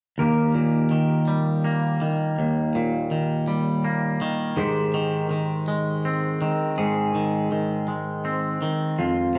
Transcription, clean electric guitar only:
0.18 2.01 D#2 soft
0.55 2.38 A#2 soft
0.91 2.00 D#3 soft
1.28 3.47 G3 soft
1.64 3.48 A#3 soft
2.02 3.10 D#3 soft
2.39 4.22 D#2 soft
2.75 4.57 A#2 soft
3.11 4.20 D#3 soft
3.48 4.60 G3 soft
3.85 4.58 A#3 soft
4.21 4.58 D#3 soft
4.57 6.41 G#2 soft
4.94 5.30 D#3 soft
5.31 6.40 D#3 soft
5.68 7.88 G#3 soft
6.05 8.24 C4 soft
6.42 7.14 D#3 soft
6.78 8.62 G#2 soft
7.15 7.51 D#3 soft
7.52 8.61 D#3 soft
7.88 9.38 G#3 soft
8.25 9.38 C4 soft
8.62 8.99 D#3 soft
8.99 9.38 F2 soft
9.35 9.38 C3 soft

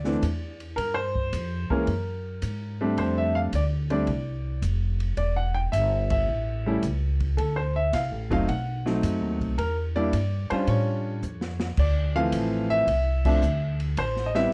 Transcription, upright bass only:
0.00 0.21 D2 medium
0.22 0.76 E2 medium
0.77 1.31 G2 medium
1.33 1.68 F2 medium
1.70 muted upright bass stroke soft
1.87 2.41 F#2 medium
2.42 2.96 G#2 medium
2.97 3.51 F2 medium
3.53 4.06 D2 medium
4.07 4.61 C2 medium
4.62 5.16 F1 medium
5.17 5.71 E1 medium
5.73 6.26 G1 medium
6.27 6.81 A1 medium
6.83 7.36 C#2 medium
7.37 7.91 D2 medium
7.93 8.11 C2 medium
8.11 8.29 A1 medium
8.30 8.47 F1 medium
8.48 9.01 B1 medium
9.03 9.21 F#2 medium
9.21 9.39 D#2 medium
9.39 9.56 B1 medium
9.58 10.11 E2 medium
10.13 10.48 G2 medium
10.51 muted upright bass stroke soft
10.67 11.21 A2 medium
11.23 11.76 F2 medium
11.77 12.31 D2 medium
12.32 12.86 A1 medium
12.87 13.41 C2 medium
13.42 13.95 D2 medium
13.97 14.51 A1 medium

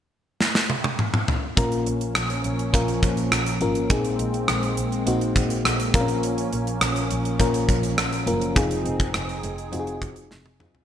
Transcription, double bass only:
1.57 1.78 A#1 medium
1.86 2.07 A#1 medium
2.15 2.36 A#1 medium
2.45 2.66 A#1 medium
2.74 2.95 A#1 medium
3.03 3.24 A#1 loud
3.32 3.53 A#1 medium
3.61 3.82 G#1 medium
3.90 4.11 A#1 medium
4.19 4.40 A#1 medium
4.49 4.69 A#1 medium
4.78 4.98 A#1 medium
5.07 5.28 A#1 medium
5.36 5.57 A#1 medium
5.65 5.86 A#1 medium
5.94 6.36 A#1 medium
6.52 6.73 A#1 medium
6.81 7.02 A#1 medium
7.10 7.31 A#1 medium
7.40 7.61 A#1 medium
7.69 7.90 A#1 medium
7.98 8.26 A#1 medium
8.27 8.48 F#1 medium
8.56 8.77 F1 loud
8.85 9.06 F1 medium
9.14 9.35 F1 medium
9.43 9.64 F1 medium
9.72 9.93 F1 loud
10.02 10.23 F1 medium
10.31 10.52 F1 medium
10.60 10.81 F#1 medium

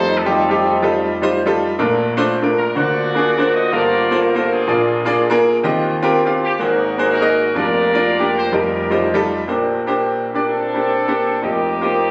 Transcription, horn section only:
0.00 0.16 D#4 medium
0.00 0.16 A4 medium
0.00 0.17 C5 loud
0.17 1.09 C4 medium
0.17 1.09 D#4 medium
0.17 0.84 A4 medium
2.58 2.75 A#4 medium
2.75 3.68 F4 medium
2.75 3.68 F#4 medium
2.75 3.54 D5 medium
3.54 3.72 D#5 loud
3.71 4.49 F4 medium
3.71 4.21 A#4 medium
3.71 4.21 D5 loud
4.22 4.51 A#4 medium
4.50 5.42 D4 medium
4.50 5.42 F4 medium
4.50 5.17 G#4 loud
6.44 6.60 G4 medium
6.60 7.08 D#4 medium
6.60 7.08 F#4 medium
6.60 7.09 A#4 medium
7.09 7.54 D#4 medium
7.09 7.54 F#4 medium
7.09 7.54 A#4 loud
7.57 8.50 F4 medium
7.57 8.49 A#4 medium
7.57 8.35 D5 loud
8.36 8.53 C5 loud
8.55 9.47 D#4 medium
8.55 9.47 G4 medium
8.55 9.28 A#4 medium
10.45 11.39 C4 medium
10.45 11.39 D4 medium
10.45 11.39 A4 medium
11.43 12.11 A#3 medium
11.43 12.11 D#4 medium
11.43 12.11 G4 loud

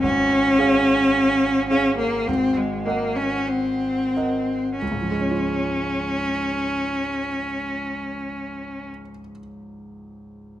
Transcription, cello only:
0.03 1.67 C#4 medium
1.70 1.98 C#4 medium
1.98 2.29 A#3 medium
2.28 2.58 C4 medium
2.56 2.87 G#3 medium
2.85 3.18 A#3 medium
3.16 3.50 C#4 medium
3.48 4.77 C4 medium
4.78 8.87 C#4 medium

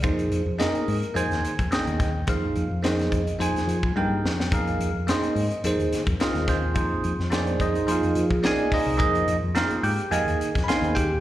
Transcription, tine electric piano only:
0.03 0.40 A#3 medium
0.03 0.41 D#4 medium
0.03 0.41 G#4 medium
0.03 0.56 C5 medium
0.58 0.96 A#3 medium
0.58 0.96 D#4 medium
0.58 0.96 G#4 medium
0.58 1.12 A#4 medium
0.58 0.96 D#5 medium
1.14 1.52 A#3 medium
1.14 1.52 D#4 medium
1.14 1.52 G#4 medium
1.14 1.53 C5 medium
1.14 1.68 G#5 medium
1.71 2.08 A#3 medium
1.71 2.08 D#4 medium
1.71 2.09 G#4 medium
1.71 2.09 D#5 medium
1.71 2.25 G5 medium
2.27 2.64 A#3 medium
2.27 2.64 D#4 medium
2.27 2.64 G#4 medium
2.27 2.65 C5 medium
2.27 2.81 F5 medium
2.83 3.20 A#3 medium
2.83 3.20 D#4 medium
2.83 3.21 G#4 medium
2.83 3.21 C5 medium
2.83 3.36 D#5 medium
3.39 3.76 A#3 medium
3.39 3.76 D#4 medium
3.39 3.77 G#4 medium
3.39 3.77 C5 medium
3.39 3.93 G#5 medium
3.96 4.32 A#3 medium
3.96 4.33 D#4 medium
3.96 4.33 G#4 medium
3.96 4.33 A#4 medium
3.96 4.49 G5 medium
4.51 4.88 A#3 medium
4.51 4.88 D#4 medium
4.51 4.89 G#4 medium
4.51 4.89 A#4 medium
4.51 5.05 F5 medium
5.07 5.44 A#3 medium
5.07 5.45 D#4 medium
5.07 5.45 G#4 medium
5.07 5.45 C5 medium
5.07 5.61 D#5 medium
5.65 6.01 A#3 medium
5.65 6.01 D#4 medium
5.65 6.01 G#4 medium
5.65 6.02 C5 medium
6.20 6.57 A#3 medium
6.20 6.57 D#4 medium
6.20 6.48 F4 medium
6.20 6.48 G#4 medium
6.20 6.48 C5 medium
6.20 6.57 D#5 medium
6.20 6.48 F5 medium
6.49 7.29 C4 medium
6.49 7.29 F4 medium
6.49 6.75 G#4 medium
6.49 6.75 C5 medium
6.75 7.12 A#3 medium
6.75 7.12 D#4 medium
6.75 7.13 G#4 medium
6.75 7.13 C5 medium
7.30 7.68 A#3 medium
7.30 7.61 D#4 medium
7.30 7.60 G#4 medium
7.30 7.60 C5 medium
7.30 7.60 D5 medium
7.35 7.61 D4 medium
7.61 7.86 D#4 medium
7.61 7.87 G#4 medium
7.61 7.87 C5 medium
7.61 7.88 D#5 medium
7.87 8.24 A#3 medium
7.87 8.24 D#4 medium
7.87 8.70 F4 medium
7.87 7.90 G#4 medium
7.87 8.25 C5 medium
7.91 8.43 G#4 medium
7.91 8.45 F5 medium
8.43 8.80 A#3 medium
8.43 8.72 D#4 medium
8.43 8.72 G#4 medium
8.43 8.81 D5 medium
8.43 8.72 D#5 medium
8.43 8.73 F5 medium
8.43 8.72 G#5 medium
8.73 8.96 D#4 medium
8.73 8.97 G#4 medium
8.73 9.53 C5 medium
8.73 8.98 D#5 medium
8.97 9.35 A#3 medium
8.97 9.36 D#4 medium
8.97 9.36 G#4 medium
8.97 9.36 D#5 medium
9.55 9.92 A#3 medium
9.55 9.92 D#4 medium
9.55 9.84 F4 medium
9.55 9.93 G#4 medium
9.55 9.93 A#4 medium
9.55 9.84 C5 medium
9.55 9.84 F5 medium
9.83 10.11 G4 medium
9.83 10.11 G5 medium
10.11 10.48 A#3 medium
10.11 10.49 D#4 medium
10.11 10.49 G#4 medium
10.11 10.93 D#5 medium
10.11 10.68 F5 medium
10.11 10.67 G#5 medium
10.64 10.68 B5 medium
10.68 11.05 A#3 medium
10.68 11.06 D#4 medium
10.68 11.06 G#4 medium
10.68 10.96 C5 medium
10.68 10.96 F5 medium
10.68 10.96 G#5 medium
10.68 10.96 C6 medium
10.95 11.20 G4 medium
10.95 11.20 G5 medium

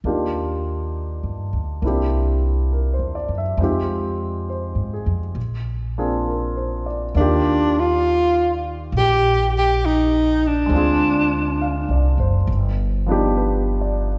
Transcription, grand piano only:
0.05 1.80 A#3 soft
0.05 1.83 D4 soft
0.05 1.84 D#4 soft
0.05 1.84 F4 soft
0.05 1.84 G4 soft
1.82 3.59 A#3 soft
1.82 3.58 C4 soft
1.82 3.60 D4 soft
1.82 3.60 E4 soft
1.87 3.61 G4 soft
2.72 3.14 A#4 soft
2.94 3.32 C5 soft
3.15 3.42 D5 soft
3.38 3.68 E5 soft
3.58 5.36 G#3 soft
3.58 5.36 C4 soft
3.58 5.37 D#4 soft
3.62 5.38 F4 soft
3.62 5.38 G4 soft
4.50 5.19 C5 soft
4.94 5.55 G#4 soft
5.98 7.14 A#3 soft
5.98 7.16 C4 soft
5.98 7.16 D4 soft
5.98 7.16 F4 soft
5.98 7.16 G#4 soft
6.28 6.85 A#4 soft
6.57 7.03 C5 soft
6.86 7.15 D5 soft
7.15 10.72 D#3 soft
7.15 10.71 A#3 soft
7.15 10.71 D5 soft
7.20 10.73 F4 soft
7.20 8.96 G4 medium
8.98 10.73 G4 soft
10.66 12.45 G#3 soft
10.66 12.47 C4 soft
10.72 12.48 D4 soft
10.72 12.49 F4 soft
10.78 12.51 G#4 soft
11.62 12.17 F5 soft
11.91 12.36 D5 soft
12.20 12.65 C5 soft
13.06 14.18 F3 soft
13.06 14.18 B3 soft
13.06 14.18 D4 soft
13.06 14.18 D#4 soft
13.12 14.18 G4 medium
13.37 14.06 B4 soft
13.81 14.18 D5 soft

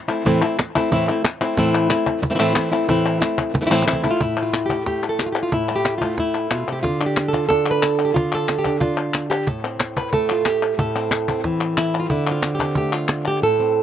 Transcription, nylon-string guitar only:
0.08 0.25 A3 soft
0.08 0.25 C4 soft
0.08 0.24 E4 medium
0.25 0.41 A2 medium
0.25 0.42 E3 medium
0.25 0.42 A3 medium
0.25 0.42 C4 medium
0.25 0.41 E4 medium
0.42 0.59 A3 soft
0.42 0.59 C4 soft
0.42 0.58 E4 soft
0.59 muted nylon-string guitar stroke medium
0.75 0.91 A3 soft
0.75 0.91 C4 medium
0.75 0.91 E4 medium
0.91 1.07 A2 medium
0.91 1.08 E3 medium
0.91 1.08 A3 loud
0.91 1.08 C4 medium
0.91 1.08 E4 medium
1.09 1.24 A3 soft
1.09 1.24 C4 soft
1.09 1.24 E4 medium
1.24 muted nylon-string guitar stroke medium
1.41 1.57 A3 soft
1.41 1.57 C4 soft
1.41 1.57 E4 medium
1.58 1.90 A2 medium
1.58 1.90 E3 medium
1.58 1.90 A3 medium
1.58 1.90 C4 medium
1.58 1.89 E4 medium
1.90 2.22 A3 soft
1.90 2.22 C4 medium
1.90 2.22 E4 medium
2.22 muted nylon-string guitar stroke medium
2.30 2.34 E3 soft
2.30 2.34 A3 medium
2.30 2.34 C4 medium
2.30 2.35 E4 medium
2.35 2.38 E3 medium
2.35 2.38 A3 medium
2.35 2.39 C4 medium
2.35 2.39 E4 medium
2.39 2.55 A2 medium
2.39 2.54 E3 medium
2.39 2.54 A3 medium
2.39 2.55 C4 medium
2.39 2.56 E4 medium
2.55 2.71 E3 medium
2.55 2.72 A3 medium
2.55 2.72 C4 medium
2.55 2.70 E4 medium
2.72 2.88 A3 soft
2.72 2.88 C4 soft
2.72 2.88 E4 medium
2.88 3.21 A2 medium
2.88 3.21 E3 medium
2.88 3.21 A3 medium
2.88 3.21 C4 medium
2.88 3.19 E4 medium
3.21 3.53 A3 soft
3.21 3.54 C4 soft
3.21 3.53 E4 medium
3.54 muted nylon-string guitar stroke medium
3.61 3.64 E3 soft
3.61 3.65 A3 soft
3.61 3.65 C4 medium
3.61 3.66 E4 soft
3.66 3.69 E3 medium
3.66 3.70 A3 medium
3.66 3.70 C4 medium
3.66 3.70 E4 medium
3.70 3.86 A2 medium
3.70 3.86 E3 medium
3.70 3.86 A3 medium
3.70 3.87 C4 medium
3.70 3.87 E4 medium
3.87 4.03 E3 soft
3.87 4.03 A3 soft
3.87 4.04 C4 medium
3.87 4.03 E4 medium
4.04 4.21 A3 soft
4.04 4.10 C4 soft
4.04 4.20 E4 medium
4.11 4.21 F4 medium
4.20 5.52 A2 medium
4.20 4.76 E4 medium
4.38 4.70 A3 soft
4.43 4.64 F4 medium
4.66 4.86 G4 medium
4.70 4.86 A3 soft
4.86 5.71 A3 medium
4.86 5.09 G4 medium
5.09 5.21 A4 medium
5.21 5.26 G4 medium
5.26 5.31 F4 medium
5.32 5.42 G4 medium
5.43 5.53 F4 medium
5.53 6.51 A2 medium
5.53 6.08 E4 medium
5.71 6.03 A3 soft
5.76 5.97 G4 medium
5.98 6.19 F4 medium
6.03 6.18 A3 soft
6.19 6.84 A3 soft
6.19 6.85 E4 medium
6.51 6.67 B2 soft
6.51 6.72 F4 medium
6.68 6.84 C3 soft
6.72 6.82 G4 medium
6.83 8.14 D3 medium
6.83 7.05 F4 medium
7.01 7.49 D4 soft
7.06 7.33 G4 medium
7.28 7.47 A4 medium
7.34 8.04 F4 soft
7.49 8.14 D4 medium
7.49 7.71 A4 medium
7.71 7.82 B4 medium
7.82 8.33 A4 medium
8.05 8.14 G4 medium
8.14 9.47 D3 medium
8.14 8.58 F4 medium
8.35 8.91 A4 medium
8.59 8.80 G4 medium
8.67 8.81 D4 soft
8.80 9.46 D4 medium
8.80 9.30 F4 medium
9.30 9.47 G4 medium
9.47 10.77 A2 medium
9.47 9.96 A4 medium
9.64 10.96 C4 soft
9.98 10.13 B4 medium
10.13 11.44 A3 soft
10.13 10.63 A4 medium
10.31 10.47 F4 medium
10.47 10.95 G4 medium
10.78 12.10 A2 medium
10.78 11.77 A4 medium
10.96 11.29 C4 soft
11.29 12.14 C4 soft
11.45 12.08 E3 medium
11.78 11.99 E4 medium
12.00 12.10 F4 medium
12.11 13.42 D3 medium
12.11 12.31 E4 medium
12.29 12.60 C4 soft
12.29 12.54 F4 medium
12.55 12.76 G4 medium
12.61 13.59 C4 soft
12.77 13.83 A3 medium
12.77 12.93 G4 medium
12.93 13.25 F4 medium
13.28 13.43 G4 medium
13.42 13.83 A2 medium
13.42 13.83 A4 medium
13.60 13.83 C4 soft

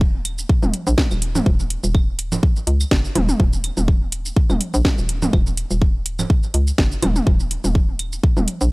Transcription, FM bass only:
0.00 0.44 D#1 medium
0.63 0.70 D#1 loud
0.87 0.95 A#1 loud
1.11 1.41 D#1 medium
1.46 1.77 D#1 loud
1.84 2.38 D#1 medium
2.67 2.85 C#2 medium
2.91 3.09 F#1 medium
3.15 3.33 D#1 loud
3.40 3.71 D#1 loud
3.77 4.31 D#1 medium
4.50 4.57 D#1 loud
4.74 4.82 A#1 loud
4.98 5.28 D#1 medium
5.33 5.64 D#1 loud
5.71 6.25 D#1 medium
6.54 6.72 C#2 medium
6.78 6.96 F#1 medium
7.02 7.20 D#1 loud
7.27 7.58 D#1 medium
7.64 8.18 D#1 medium
8.37 8.45 D#1 loud
8.61 8.69 A#1 loud

